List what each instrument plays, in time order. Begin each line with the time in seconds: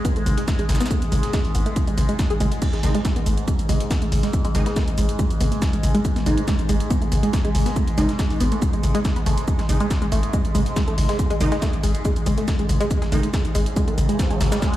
Already playing: synth drone G#2 G#3
0.05 synth arpeggio sound B3, kick, closed hi-hat, shaker
0.16 808-style bass G#1, synth arpeggio sound A3, closed hi-hat
0.26 808-style bass G#1, open hi-hat, mid tom, shaker
0.38 synth arpeggio sound G#3, closed hi-hat
0.48 kick, snare, closed hi-hat, shaker
0.59 808-style bass G#1, synth arpeggio sound G#3, closed hi-hat
0.69 808-style bass G#1, snare, open hi-hat, mid tom, shaker
0.75 snare, shaker
0.80 synth arpeggio sound B3, snare, closed hi-hat, shaker
0.86 snare, shaker
0.91 synth arpeggio sound A3, kick, closed hi-hat, shaker
1.02 808-style bass G#1, closed hi-hat
1.12 808-style bass G#1, synth arpeggio sound G#3, open hi-hat, mid tom, shaker
1.23 snare, closed hi-hat
1.33 synth arpeggio sound G#3, kick, snare, closed hi-hat, shaker
1.45 808-style bass G#1, open hi-hat
1.55 808-style bass G#1, synth arpeggio sound B3, open hi-hat, shaker
1.66 synth arpeggio sound A3, closed hi-hat
1.76 kick, closed hi-hat, shaker
1.87 808-style bass G#1, synth arpeggio sound G#3, closed hi-hat
1.98 808-style bass G#1, open hi-hat, mid tom, shaker
2.09 synth arpeggio sound G#3, closed hi-hat
2.19 kick, snare, closed hi-hat, shaker
2.30 808-style bass G#1, synth arpeggio sound G#4, closed hi-hat
2.40 808-style bass G#1, synth arpeggio sound G#3, open hi-hat, mid tom, shaker
2.52 closed hi-hat
2.62 synth drone G#2 G#3, kick, closed hi-hat, crash, shaker
2.73 808-style bass G#1, synth arpeggio sound G#3, snare, closed hi-hat
2.83 808-style bass G#1, synth stab D#3 G#3 D#4, open hi-hat, mid tom, shaker
2.95 synth arpeggio sound G#3, closed hi-hat
3.05 kick, snare, closed hi-hat, shaker
3.16 808-style bass G#1, synth arpeggio sound B3, closed hi-hat
3.26 808-style bass G#1, synth arpeggio sound A3, open hi-hat, shaker
3.38 closed hi-hat
3.48 synth arpeggio sound G#3, kick, closed hi-hat, shaker
3.59 808-style bass G#1, closed hi-hat
3.69 808-style bass G#1, synth arpeggio sound G#3, open hi-hat, mid tom, shaker
3.80 closed hi-hat
3.91 synth arpeggio sound B3, kick, snare, closed hi-hat, shaker
4.02 808-style bass G#1, synth arpeggio sound A3, closed hi-hat
4.12 808-style bass G#1, open hi-hat, mid tom
4.23 synth arpeggio sound G#3, snare, closed hi-hat
4.33 kick, closed hi-hat, shaker
4.45 808-style bass G#1, synth arpeggio sound G#3, closed hi-hat
4.55 808-style bass G#1, synth stab D#3 G#3 D#4, open hi-hat, mid tom, shaker
4.66 synth arpeggio sound B3, snare, closed hi-hat
4.76 synth arpeggio sound A3, kick, snare, closed hi-hat, shaker
4.88 808-style bass G#1, closed hi-hat
4.98 808-style bass G#1, synth arpeggio sound G#3, open hi-hat, shaker
5.09 closed hi-hat
5.19 synth arpeggio sound G#3, kick, closed hi-hat, shaker
5.30 808-style bass G#1, closed hi-hat
5.41 808-style bass G#1, synth arpeggio sound B3, open hi-hat, mid tom, shaker
5.52 synth arpeggio sound A3, closed hi-hat
5.62 kick, snare, closed hi-hat, shaker
5.73 808-style bass G#1, synth arpeggio sound G#3, closed hi-hat
5.83 808-style bass G#1, open hi-hat, mid tom, shaker
5.95 synth arpeggio sound G#3, closed hi-hat
6.05 kick, closed hi-hat, shaker
6.16 808-style bass G#1, synth arpeggio sound B3, snare, closed hi-hat
6.26 808-style bass G#1, synth stab D#3 G#3 D#4, synth arpeggio sound A3, open hi-hat, mid tom, shaker
6.38 closed hi-hat
6.48 synth arpeggio sound G#3, kick, snare, closed hi-hat, shaker
6.59 808-style bass G#1, closed hi-hat
6.69 808-style bass G#1, synth arpeggio sound G#3, open hi-hat, shaker
6.80 closed hi-hat
6.90 synth arpeggio sound B3, kick, closed hi-hat, shaker
7.02 808-style bass G#1, synth arpeggio sound A3, closed hi-hat
7.12 808-style bass G#1, open hi-hat, mid tom, shaker
7.23 synth arpeggio sound G#3, closed hi-hat
7.33 kick, snare, closed hi-hat, shaker
7.44 808-style bass G#1, synth arpeggio sound G#3, closed hi-hat
7.55 808-style bass G#1, open hi-hat, mid tom
7.66 synth arpeggio sound B3, snare, closed hi-hat
7.76 synth arpeggio sound A3, kick, closed hi-hat, shaker
7.87 808-style bass G#1, closed hi-hat
7.98 808-style bass G#1, synth stab D#3 G#3 D#4, synth arpeggio sound G#3, open hi-hat, mid tom, shaker
8.09 snare, closed hi-hat
8.19 synth arpeggio sound G#3, kick, snare, closed hi-hat, shaker
8.30 808-style bass G#1, open hi-hat
8.40 808-style bass G#1, synth arpeggio sound B3, open hi-hat, shaker
8.52 synth arpeggio sound A3, closed hi-hat
8.62 kick, closed hi-hat, shaker
8.73 808-style bass G#1, synth arpeggio sound G#3, closed hi-hat
8.83 808-style bass G#1, open hi-hat, mid tom, shaker
8.95 synth arpeggio sound G#3, closed hi-hat
9.05 kick, snare, closed hi-hat, shaker
9.16 808-style bass G#1, synth arpeggio sound B3, closed hi-hat
9.26 808-style bass G#1, synth arpeggio sound A3, open hi-hat, mid tom, shaker
9.38 closed hi-hat
9.48 kick, closed hi-hat, shaker
9.59 808-style bass G#1, synth arpeggio sound G#3, snare, closed hi-hat
9.69 808-style bass G#1, synth stab D#3 G#3 D#4, open hi-hat, mid tom, shaker
9.80 synth arpeggio sound G#3, closed hi-hat
9.91 kick, snare, closed hi-hat, shaker
10.02 808-style bass G#1, synth arpeggio sound G#3, closed hi-hat
10.12 808-style bass G#1, synth arpeggio sound A3, open hi-hat, shaker
10.23 closed hi-hat
10.33 synth arpeggio sound G#3, kick, closed hi-hat, shaker
10.45 808-style bass G#1, closed hi-hat
10.55 808-style bass G#1, synth arpeggio sound G#3, open hi-hat, mid tom, shaker
10.66 closed hi-hat
10.76 synth arpeggio sound G#3, kick, snare, closed hi-hat, shaker
10.88 808-style bass G#1, synth arpeggio sound A3, closed hi-hat
10.98 808-style bass G#1, open hi-hat, mid tom
11.09 synth arpeggio sound G#3, snare, closed hi-hat
11.19 kick, closed hi-hat, shaker
11.30 808-style bass G#1, synth arpeggio sound G#3, closed hi-hat
11.41 808-style bass G#1, synth stab D#3 G#3 D#4, open hi-hat, mid tom, shaker
11.52 synth arpeggio sound G#3, snare, closed hi-hat
11.62 synth arpeggio sound A3, kick, snare, closed hi-hat, shaker
11.73 808-style bass G#1, closed hi-hat
11.83 808-style bass G#1, synth arpeggio sound G#3, open hi-hat, shaker
11.95 closed hi-hat
12.05 synth arpeggio sound G#3, kick, closed hi-hat, shaker
12.16 808-style bass G#1, closed hi-hat
12.26 808-style bass G#1, synth arpeggio sound G#3, open hi-hat, mid tom, shaker
12.38 synth arpeggio sound A3, closed hi-hat
12.48 kick, snare, closed hi-hat, shaker
12.59 808-style bass G#1, synth arpeggio sound G#3, closed hi-hat
12.69 808-style bass G#1, open hi-hat, mid tom, shaker
12.80 synth arpeggio sound G#3, closed hi-hat
12.91 kick, closed hi-hat, riser, shaker
13.02 808-style bass G#1, synth arpeggio sound G#3, snare, closed hi-hat
13.12 808-style bass G#1, synth stab D#3 G#3 D#4, synth arpeggio sound A3, open hi-hat, mid tom, shaker
13.23 closed hi-hat
13.34 synth arpeggio sound G#3, kick, snare, closed hi-hat, shaker
13.45 808-style bass G#1, closed hi-hat
13.55 808-style bass G#1, synth arpeggio sound G#3, open hi-hat, shaker
13.66 closed hi-hat
13.76 synth arpeggio sound G#3, kick, closed hi-hat, shaker
13.88 808-style bass G#1, synth arpeggio sound A3, closed hi-hat
13.98 808-style bass G#1, open hi-hat, mid tom, shaker
14.09 synth arpeggio sound G#3, closed hi-hat
14.19 kick, snare, closed hi-hat, shaker
14.30 808-style bass G#1, synth arpeggio sound G#3, closed hi-hat
14.41 808-style bass G#1, snare, open hi-hat, mid tom, shaker
14.52 synth arpeggio sound G#3, snare, closed hi-hat, shaker
14.62 synth arpeggio sound A3, kick, snare, closed hi-hat, shaker
14.73 808-style bass G#1, closed hi-hat